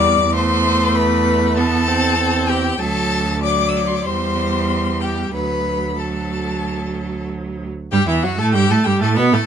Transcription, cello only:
0.00 2.76 E2 medium
2.80 4.02 D2 medium
4.06 5.31 E2 medium
5.34 7.68 D2 medium
7.92 7.98 G2 loud
8.07 8.25 E2 medium
8.23 8.40 F#2 medium
8.39 8.55 A2 medium
8.54 8.69 G2 loud
8.70 8.76 A2 medium
8.85 8.92 G2 medium
9.01 9.19 A2 medium
9.17 9.32 B2 loud
9.33 9.39 A2 medium

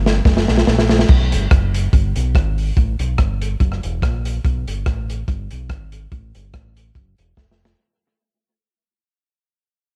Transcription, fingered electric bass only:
0.00 0.19 G1 loud
0.26 0.45 F#1 loud
0.49 0.65 A#1 medium
0.68 1.03 A#1 medium
1.10 1.34 B1 loud
1.33 1.49 G1 medium
1.51 1.87 F#1 loud
1.93 2.13 G1 loud
2.17 2.33 B1 medium
2.35 2.71 G#1 medium
2.77 2.96 A1 loud
3.00 3.16 B1 medium
3.19 3.54 G1 medium
3.61 3.80 F#1 loud
3.84 4.00 E1 medium
4.03 4.38 A#1 loud
4.45 4.64 B1 loud
4.68 4.84 G1 medium
4.87 5.22 A1 medium
5.28 5.48 G1 loud
5.52 5.68 B1 medium
5.70 6.06 G#1 medium
6.12 6.31 A1 loud
6.35 6.51 G1 medium
6.54 6.90 A1 medium
6.96 7.15 F#1 loud
7.18 7.35 E1 medium
7.38 7.73 F1 medium

